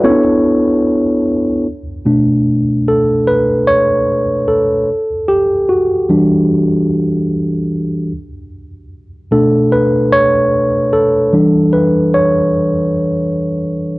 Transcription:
0.00 1.28 B3 medium
0.00 0.10 C#4 medium
0.00 1.28 E4 medium
0.00 0.22 F#4 soft
0.00 0.22 B4 medium
0.05 1.29 A4 medium
0.05 1.29 C#5 medium
0.10 1.31 D4 medium
2.05 2.59 B2 medium
2.05 2.60 A3 soft
2.05 2.60 D4 medium
2.88 3.29 A4 medium
3.27 3.69 B4 medium
3.67 4.44 C#5 loud
4.48 5.31 A4 medium
5.28 5.70 G4 medium
5.69 6.07 F#4 medium
6.09 7.26 E3 soft
6.09 7.26 G3 soft
6.09 7.27 D4 medium
9.31 11.29 B2 soft
9.31 11.30 A3 soft
9.31 11.30 D4 medium
9.31 9.74 A4 medium
9.72 10.14 B4 medium
10.12 10.96 C#5 loud
10.93 11.76 A4 medium
11.33 13.99 E3 medium
11.33 13.99 G3 soft
11.33 13.99 D4 medium
11.73 12.15 B4 medium
12.14 12.52 C#5 medium

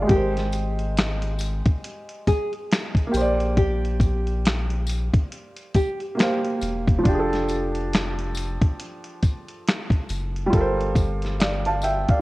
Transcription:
0.00 3.06 G#3 medium
0.00 0.11 D5 medium
0.00 0.12 F5 medium
0.00 0.11 G5 medium
0.00 0.11 A5 medium
0.07 1.62 G#1 medium
0.07 3.08 G4 medium
0.07 kick loud
0.07 closed hi-hat medium
0.11 1.19 G4 medium
0.11 3.11 A#4 medium
0.16 3.13 C5 medium
0.37 snare soft
0.37 closed hi-hat soft
0.52 closed hi-hat medium
0.52 tambourine soft
0.79 closed hi-hat soft
0.97 finger snap medium
0.97 snare loud
0.97 closed hi-hat medium
1.22 closed hi-hat soft
1.39 closed hi-hat medium
1.39 tambourine medium
1.66 kick medium
1.66 closed hi-hat medium
1.84 closed hi-hat medium
2.09 closed hi-hat soft
2.27 2.51 G#4 medium
2.27 kick medium
2.27 closed hi-hat medium
2.27 tambourine soft
2.53 closed hi-hat soft
2.71 finger snap medium
2.71 snare loud
2.71 closed hi-hat medium
2.95 kick medium
2.95 closed hi-hat soft
3.07 6.11 A#3 medium
3.12 5.10 A#1 loud
3.12 6.13 G4 medium
3.12 closed hi-hat medium
3.12 tambourine medium
3.17 6.15 C5 medium
3.21 6.18 D5 medium
3.40 closed hi-hat soft
3.57 4.67 G4 medium
3.57 kick medium
3.57 closed hi-hat medium
3.85 closed hi-hat soft
4.00 kick medium
4.00 closed hi-hat medium
4.00 tambourine soft
4.27 closed hi-hat soft
4.45 finger snap loud
4.45 snare loud
4.45 closed hi-hat medium
4.70 closed hi-hat soft
4.87 closed hi-hat medium
4.87 tambourine medium
5.14 kick loud
5.14 closed hi-hat medium
5.32 closed hi-hat medium
5.57 closed hi-hat soft
5.74 5.99 G4 medium
5.74 kick medium
5.74 closed hi-hat medium
5.74 tambourine soft
6.00 closed hi-hat soft
6.15 7.03 A#3 medium
6.15 7.05 G4 medium
6.19 7.06 C5 medium
6.19 7.07 F5 medium
6.19 finger snap medium
6.19 snare loud
6.19 closed hi-hat medium
6.45 closed hi-hat soft
6.61 7.01 E1 loud
6.61 closed hi-hat medium
6.61 tambourine medium
6.87 kick loud
6.87 closed hi-hat soft
6.98 10.45 F3 medium
7.03 8.58 F1 medium
7.03 10.48 D4 medium
7.03 kick loud
7.03 closed hi-hat medium
7.08 10.50 G4 medium
7.13 7.17 G#4 medium
7.19 10.51 A4 medium
7.33 snare soft
7.33 closed hi-hat soft
7.48 closed hi-hat medium
7.48 tambourine medium
7.75 closed hi-hat soft
7.93 finger snap medium
7.93 snare loud
7.93 closed hi-hat medium
8.19 closed hi-hat soft
8.35 closed hi-hat medium
8.35 tambourine medium
8.62 kick medium
8.62 closed hi-hat medium
8.80 closed hi-hat medium
9.04 closed hi-hat soft
9.22 kick medium
9.22 closed hi-hat medium
9.22 tambourine medium
9.48 closed hi-hat soft
9.67 finger snap medium
9.67 snare loud
9.67 closed hi-hat medium
9.90 kick medium
9.90 closed hi-hat soft
10.09 10.49 F#1 medium
10.09 closed hi-hat medium
10.09 tambourine medium
10.36 closed hi-hat soft
10.46 12.20 G3 medium
10.46 12.21 F4 medium
10.53 12.05 G1 loud
10.53 12.21 A4 medium
10.53 12.21 A#4 medium
10.53 kick loud
10.53 closed hi-hat medium
10.60 12.21 C5 medium
10.80 closed hi-hat soft
10.95 kick medium
10.95 closed hi-hat medium
10.95 tambourine soft
11.22 snare soft
11.22 closed hi-hat soft
11.40 11.65 D5 medium
11.40 11.65 F5 medium
11.40 finger snap loud
11.40 snare loud
11.40 closed hi-hat medium
11.66 11.83 F5 medium
11.66 11.83 A5 medium
11.66 closed hi-hat soft
11.82 12.08 E5 medium
11.82 12.08 G5 medium
11.82 closed hi-hat medium
11.82 tambourine medium
12.09 12.21 D5 medium
12.09 12.21 F5 medium
12.09 kick medium
12.09 closed hi-hat soft

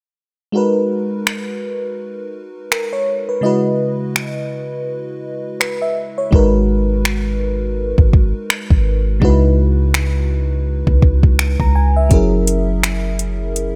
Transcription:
0.52 3.39 G#3 medium
0.52 3.39 D#4 medium
0.52 3.40 F#4 medium
0.52 2.68 A#4 medium
0.57 2.69 B4 medium
1.27 finger snap loud
2.72 2.91 A#4 medium
2.72 finger snap loud
2.93 3.27 C#5 medium
3.29 3.45 B4 medium
3.41 6.27 C#3 medium
3.41 6.28 G#3 medium
3.41 6.29 E4 medium
3.41 6.29 F#4 medium
3.41 6.28 D#5 medium
3.46 5.58 B4 medium
4.16 finger snap loud
5.60 5.80 B4 medium
5.60 finger snap loud
5.82 6.16 E5 medium
6.18 6.52 C#5 medium
6.31 7.94 G#1 loud
6.31 9.17 G#3 medium
6.31 9.18 D#4 medium
6.31 9.18 F#4 medium
6.31 9.19 A#4 medium
6.31 kick loud
6.36 9.19 B4 medium
7.05 finger snap loud
7.98 8.33 G#1 loud
7.98 kick medium
8.13 kick loud
8.50 finger snap loud
8.70 9.20 G#1 loud
8.70 kick medium
9.20 10.83 C#2 loud
9.20 12.06 C#3 medium
9.20 12.06 G#3 medium
9.20 12.07 D#4 medium
9.20 12.07 E4 medium
9.20 12.08 F#4 medium
9.20 kick medium
9.25 12.08 B4 medium
9.94 finger snap loud
10.87 11.57 C#2 loud
10.87 kick medium
11.02 kick loud
11.23 kick medium
11.39 finger snap loud
11.60 12.09 C#2 loud
11.60 11.74 A#5 medium
11.60 kick medium
11.75 11.95 G#5 medium
11.96 12.31 E5 medium
12.09 13.73 F#1 loud
12.09 13.76 F#3 medium
12.09 13.76 C#4 medium
12.09 13.76 E4 medium
12.09 13.76 G#4 medium
12.09 kick medium
12.09 closed hi-hat medium
12.14 13.76 A#4 medium
12.47 closed hi-hat medium
12.83 finger snap loud
12.83 closed hi-hat medium
13.19 closed hi-hat medium
13.56 closed hi-hat medium

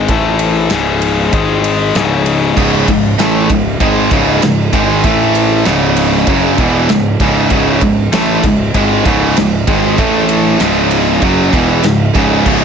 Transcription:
0.08 0.67 A1 loud
0.08 0.70 A2 loud
0.08 0.70 E3 loud
0.08 0.71 A3 loud
0.08 kick loud
0.08 ride medium
0.39 ride medium
0.70 1.29 C#1 loud
0.70 1.32 C#2 loud
0.70 1.32 G#2 loud
0.70 1.33 C#3 loud
0.70 snare loud
0.70 ride medium
1.02 ride medium
1.33 1.91 G#1 medium
1.33 1.94 G#2 loud
1.33 1.94 D#3 loud
1.33 1.95 G#3 loud
1.33 kick loud
1.33 ride loud
1.64 ride medium
1.95 2.53 C#1 loud
1.95 2.56 C#2 medium
1.95 2.56 G#2 loud
1.95 2.57 C#3 medium
1.95 snare loud
1.95 ride medium
2.26 ride medium
2.57 2.86 C#1 medium
2.57 2.87 C#2 medium
2.57 2.87 G#2 medium
2.57 2.87 C#3 medium
2.57 kick loud
2.57 crash medium
2.88 3.16 C#1 medium
2.88 3.13 C#2 medium
2.88 3.13 G#2 medium
2.88 kick loud
2.88 ride medium
3.19 3.47 A1 loud
3.19 3.49 A2 loud
3.19 3.49 E3 loud
3.19 3.49 A3 loud
3.19 snare loud
3.19 ride loud
3.50 3.78 C#1 medium
3.50 3.74 C#2 medium
3.50 3.74 G#2 medium
3.50 kick loud
3.50 ride medium
3.80 4.09 G#1 loud
3.80 4.10 G#2 medium
3.80 4.11 D#3 loud
3.80 4.11 G#3 loud
3.80 kick loud
3.80 ride loud
4.11 4.40 C#1 medium
4.11 4.41 C#2 loud
4.11 4.42 G#2 loud
4.11 4.42 C#3 loud
4.11 kick loud
4.11 ride medium
4.42 4.71 C#1 medium
4.42 4.68 C#2 medium
4.42 4.68 G#2 medium
4.42 snare loud
4.42 ride loud
4.73 5.02 G#1 medium
4.73 5.03 G#2 medium
4.73 5.03 D#3 medium
4.73 5.03 G#3 loud
4.73 kick loud
4.73 ride medium
5.04 5.62 A1 loud
5.04 5.65 A2 medium
5.04 5.65 E3 loud
5.04 5.65 A3 loud
5.04 kick loud
5.04 ride loud
5.35 ride medium
5.65 6.24 C#1 loud
5.65 6.26 C#2 loud
5.65 6.27 G#2 medium
5.65 6.27 C#3 loud
5.65 snare loud
5.65 ride medium
5.96 ride medium
6.27 6.56 F#1 medium
6.27 6.58 F#2 medium
6.27 6.58 C#3 loud
6.27 6.58 F#3 loud
6.27 kick loud
6.27 ride loud
6.58 6.87 E1 loud
6.58 6.89 E2 loud
6.58 6.89 B2 loud
6.58 6.89 E3 loud
6.58 kick loud
6.58 ride medium
6.89 7.18 C#1 medium
6.89 7.15 C#2 medium
6.89 7.15 G#2 medium
6.89 snare loud
6.89 ride loud
7.20 7.49 C#1 loud
7.20 7.50 C#2 loud
7.20 7.50 G#2 loud
7.20 7.51 C#3 loud
7.20 kick loud
7.20 ride medium
7.50 7.80 C#1 loud
7.50 7.80 C#2 medium
7.50 7.81 G#2 medium
7.50 7.81 C#3 loud
7.50 kick loud
7.50 ride medium
7.81 8.11 C#1 medium
7.81 8.07 C#2 medium
7.81 8.07 G#2 medium
7.81 kick loud
7.81 ride medium
8.12 8.42 A1 loud
8.12 8.43 A2 loud
8.12 8.43 E3 loud
8.12 8.43 A3 loud
8.12 snare loud
8.12 ride loud
8.43 8.73 C#1 medium
8.43 8.69 C#2 medium
8.43 8.69 G#2 medium
8.43 kick loud
8.43 ride medium
8.74 9.03 G#1 loud
8.74 9.04 G#2 loud
8.74 9.05 D#3 loud
8.74 9.05 G#3 loud
8.74 kick loud
8.74 ride loud
9.05 9.34 C#1 loud
9.05 9.35 C#2 loud
9.05 9.36 G#2 loud
9.05 9.36 C#3 loud
9.05 kick loud
9.05 ride medium
9.37 9.66 C#1 medium
9.37 9.61 C#2 medium
9.37 9.62 G#2 medium
9.37 snare loud
9.37 ride loud
9.67 9.96 G#1 loud
9.67 9.97 G#2 medium
9.67 9.98 D#3 loud
9.67 9.98 G#3 loud
9.67 kick loud
9.67 ride medium
9.98 10.56 A1 loud
9.98 10.59 A2 loud
9.98 10.60 E3 loud
9.98 10.60 A3 loud
9.98 kick loud
9.98 ride loud
10.29 ride medium
10.60 11.18 C#1 medium
10.60 11.21 C#2 loud
10.60 11.22 G#2 loud
10.60 11.21 C#3 loud
10.60 snare loud
10.60 ride loud
10.91 ride medium
11.22 11.51 F#1 loud
11.22 11.52 F#2 loud
11.22 11.53 C#3 loud
11.22 11.53 F#3 loud
11.22 kick medium
11.22 ride medium
11.53 11.82 E1 medium
11.53 11.83 E2 medium
11.53 11.84 B2 loud
11.53 11.84 E3 loud
11.53 kick loud
11.53 ride medium
11.83 12.13 C#1 medium
11.83 12.09 C#2 medium
11.83 12.10 G#2 medium
11.83 snare loud
11.83 ride loud
12.15 12.44 C#1 medium
12.15 12.45 C#2 medium
12.15 12.45 G#2 loud
12.15 12.46 C#3 loud
12.15 kick loud
12.15 ride medium
12.46 12.64 C#1 loud
12.46 12.64 C#2 medium
12.46 12.64 G#2 medium
12.46 12.64 C#3 loud
12.46 kick loud
12.46 crash medium

